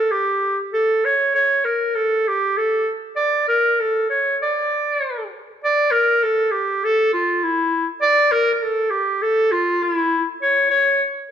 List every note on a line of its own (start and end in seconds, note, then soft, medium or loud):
0.00 0.13 A4 medium
0.11 0.58 G4 medium
0.73 1.06 A4 medium
1.05 1.34 C#5 loud
1.35 1.66 C#5 loud
1.65 1.97 A#4 medium
1.95 2.29 A4 medium
2.28 2.59 G4 medium
2.57 2.90 A4 medium
3.16 3.44 D5 medium
3.48 3.82 A#4 medium
3.80 4.09 A4 medium
4.10 4.37 C#5 medium
4.42 5.26 D5 medium
5.64 5.93 D5 loud
5.91 6.24 A#4 loud
6.23 6.53 A4 medium
6.51 6.86 G4 medium
6.84 7.12 A4 loud
7.13 7.45 F4 medium
7.43 7.86 E4 medium
8.02 8.33 D5 loud
8.32 8.53 A#4 loud
8.53 8.64 A#4 medium
8.62 8.92 A4 loud
8.90 9.24 G4 medium
9.22 9.53 A4 loud
9.52 9.84 F4 loud
9.83 10.27 E4 medium
10.42 10.69 C#5 medium
10.71 11.02 C#5 loud